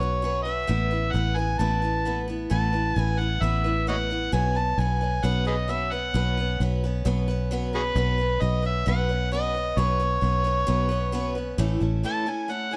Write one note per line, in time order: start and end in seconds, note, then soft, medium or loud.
0.00 0.65 B1 loud
0.00 0.23 C#4 soft
0.00 0.23 F#4 soft
0.00 0.23 B4 medium
0.00 0.41 C#5 medium
0.22 0.46 F#3 medium
0.22 0.47 C#4 medium
0.22 0.46 F#4 medium
0.22 0.44 B4 medium
0.43 0.69 F#4 soft
0.43 0.68 B4 soft
0.43 1.13 E5 loud
0.48 0.68 C#4 soft
0.67 1.12 A1 loud
0.67 0.91 A3 medium
0.67 0.92 B3 medium
0.67 0.91 E4 medium
0.67 0.90 B4 medium
0.91 1.13 B3 soft
0.91 1.14 E4 soft
0.91 1.14 B4 medium
1.12 1.57 A1 loud
1.12 1.37 A3 medium
1.12 1.37 B3 medium
1.12 1.36 E4 medium
1.12 1.38 F#5 loud
1.16 1.35 B4 medium
1.36 1.58 B3 soft
1.36 1.59 E4 soft
1.36 1.60 B4 medium
1.36 1.58 G#5 medium
1.59 2.47 A1 loud
1.59 1.83 A3 medium
1.59 1.83 B3 medium
1.59 1.82 E4 medium
1.59 1.81 B4 medium
1.59 2.24 A5 medium
1.82 2.05 B3 soft
1.82 2.06 E4 soft
1.82 2.05 B4 medium
2.05 2.28 A3 medium
2.05 2.29 B3 medium
2.05 2.28 E4 medium
2.05 2.27 B4 medium
2.28 2.50 B3 soft
2.28 2.50 E4 soft
2.28 2.51 B4 medium
2.50 2.94 A1 medium
2.50 2.73 A3 medium
2.50 2.74 B3 medium
2.50 2.73 E4 medium
2.50 2.71 B4 medium
2.50 2.97 A5 loud
2.73 2.96 B3 soft
2.73 2.97 E4 soft
2.73 2.96 B4 soft
2.96 3.39 A1 loud
2.96 3.19 A3 medium
2.96 3.20 B3 medium
2.96 3.19 E4 medium
2.96 3.17 B4 medium
2.96 3.21 G#5 loud
3.19 3.42 B3 soft
3.19 3.42 E4 soft
3.19 3.42 B4 medium
3.19 3.44 F#5 medium
3.41 4.29 A1 medium
3.41 3.65 A3 medium
3.41 3.65 B3 medium
3.41 3.65 E4 medium
3.41 3.63 B4 medium
3.41 3.88 E5 medium
3.64 3.87 B3 soft
3.64 3.88 E4 soft
3.64 3.87 B4 medium
3.87 4.10 A3 medium
3.87 4.11 B3 medium
3.87 4.10 E4 medium
3.87 4.09 B4 medium
3.87 3.96 C#5 medium
3.87 3.95 D#5 medium
3.87 4.31 F#5 loud
4.10 4.32 B3 soft
4.10 4.33 E4 soft
4.10 4.32 B4 soft
4.32 4.76 B1 loud
4.32 4.55 B2 medium
4.32 4.56 F#3 medium
4.32 4.56 B3 medium
4.32 4.56 C#4 medium
4.32 4.54 B4 medium
4.32 4.59 G#5 loud
4.55 4.78 B3 soft
4.55 4.79 C#4 soft
4.55 4.78 B4 medium
4.55 4.81 A5 medium
4.78 5.21 B1 medium
4.78 5.01 F#3 medium
4.78 5.02 B3 medium
4.78 5.01 C#4 medium
4.78 5.00 B4 medium
4.78 5.26 G#5 loud
5.01 5.23 B3 soft
5.01 5.23 C#4 soft
5.01 5.24 B4 soft
5.23 6.11 B1 loud
5.23 5.46 B2 medium
5.23 5.47 F#3 medium
5.23 5.46 B3 medium
5.23 5.46 C#4 medium
5.23 5.44 B4 medium
5.23 5.46 F#5 medium
5.45 5.68 B3 soft
5.45 5.68 C#4 medium
5.45 5.55 G#4 medium
5.45 5.69 B4 medium
5.45 5.56 B4 medium
5.45 5.72 D#5 medium
5.68 5.91 F#3 medium
5.68 5.92 B3 medium
5.68 5.92 C#4 medium
5.68 5.90 B4 medium
5.68 5.94 E5 medium
5.92 6.14 B3 soft
5.92 6.14 C#4 soft
5.92 6.15 B4 soft
5.92 6.60 F#5 medium
6.14 6.57 B1 loud
6.14 6.37 B2 medium
6.14 6.38 F#3 medium
6.14 6.38 B3 medium
6.14 6.38 C#4 medium
6.14 6.36 B4 medium
6.37 6.60 B3 soft
6.37 6.61 C#4 medium
6.37 6.60 B4 medium
6.60 7.03 B1 loud
6.60 6.83 F#3 medium
6.60 6.83 B3 medium
6.60 6.84 C#4 medium
6.60 6.83 B4 medium
6.84 7.05 B3 soft
6.84 7.05 C#4 medium
6.84 7.06 B4 medium
7.05 7.92 B1 loud
7.05 7.28 B2 medium
7.05 7.28 F#3 medium
7.05 7.28 B3 medium
7.05 7.28 C#4 medium
7.05 7.27 B4 medium
7.28 7.51 B3 medium
7.28 7.51 C#4 medium
7.28 7.51 B4 medium
7.51 7.74 F#3 medium
7.51 7.74 B3 medium
7.51 7.74 C#4 medium
7.51 7.72 B4 medium
7.73 7.96 B3 soft
7.73 7.96 C#4 soft
7.73 7.81 F#4 medium
7.73 7.81 G#4 medium
7.73 7.96 B4 soft
7.73 8.43 B4 loud
7.95 8.38 B1 loud
7.95 8.19 B2 medium
7.95 8.19 F#3 medium
7.95 8.19 B3 medium
7.95 8.18 C#4 medium
7.95 8.17 B4 medium
8.18 8.40 B3 soft
8.18 8.41 C#4 soft
8.18 8.41 B4 medium
8.40 8.84 B1 loud
8.40 8.64 F#3 medium
8.40 8.64 B3 medium
8.40 8.63 C#4 medium
8.40 8.61 B4 medium
8.40 8.64 D#5 medium
8.62 8.86 B3 soft
8.62 8.87 C#4 soft
8.62 8.86 B4 soft
8.62 8.86 E5 loud
8.86 9.74 B1 loud
8.86 9.09 B2 medium
8.86 9.10 F#3 medium
8.86 9.10 B3 medium
8.86 9.09 C#4 medium
8.86 9.08 B4 medium
8.86 9.30 F#5 loud
9.09 9.32 B3 soft
9.09 9.32 C#4 medium
9.09 9.32 B4 medium
9.32 9.55 F#3 medium
9.32 9.55 B3 medium
9.32 9.55 C#4 medium
9.32 9.53 B4 medium
9.32 9.80 D#5 loud
9.54 9.77 B3 soft
9.54 9.77 C#4 soft
9.54 9.77 B4 soft
9.77 10.20 B1 loud
9.77 10.00 B2 medium
9.77 10.00 F#3 medium
9.77 10.01 B3 medium
9.77 10.00 C#4 medium
9.77 9.98 B4 medium
9.77 11.37 C#5 loud
10.00 10.21 B3 soft
10.00 10.22 C#4 medium
10.00 10.23 B4 medium
10.21 10.65 B1 loud
10.21 10.45 F#3 medium
10.21 10.45 B3 medium
10.21 10.44 C#4 medium
10.21 10.43 B4 medium
10.44 10.67 B3 medium
10.44 10.67 C#4 medium
10.44 10.67 B4 medium
10.67 11.55 B1 loud
10.67 10.90 B2 medium
10.67 10.90 F#3 medium
10.67 10.90 B3 medium
10.67 10.89 C#4 medium
10.67 10.88 B4 medium
10.89 11.12 B3 medium
10.89 11.13 C#4 medium
10.89 11.13 B4 medium
11.12 11.36 F#3 medium
11.12 11.36 B3 medium
11.12 11.35 C#4 medium
11.12 11.34 B4 medium
11.35 11.59 B3 soft
11.35 11.58 C#4 soft
11.35 11.58 B4 medium
11.58 11.80 A1 loud
11.58 11.81 A2 medium
11.58 11.82 E3 medium
11.58 11.82 A3 medium
11.58 11.80 C#4 loud
11.58 11.80 E4 loud
11.58 11.79 A4 medium
11.80 12.03 A1 medium
11.80 12.03 A3 medium
11.80 12.03 C#4 soft
11.80 12.04 E4 medium
11.80 12.04 A4 medium
12.03 12.27 A2 medium
12.03 12.27 E3 medium
12.03 12.27 A3 medium
12.03 12.26 C#4 medium
12.03 12.26 E4 medium
12.03 12.25 A4 medium
12.03 12.31 A5 loud
12.26 12.47 A3 soft
12.26 12.48 C#4 soft
12.26 12.49 E4 soft
12.26 12.49 A4 medium
12.26 12.53 G#5 medium
12.48 12.72 A3 medium
12.48 12.72 C#4 medium
12.48 12.71 E4 medium
12.48 12.70 A4 medium
12.48 12.75 F#5 medium
12.71 12.77 C#4 medium
12.71 12.77 E4 medium
12.71 12.77 A4 medium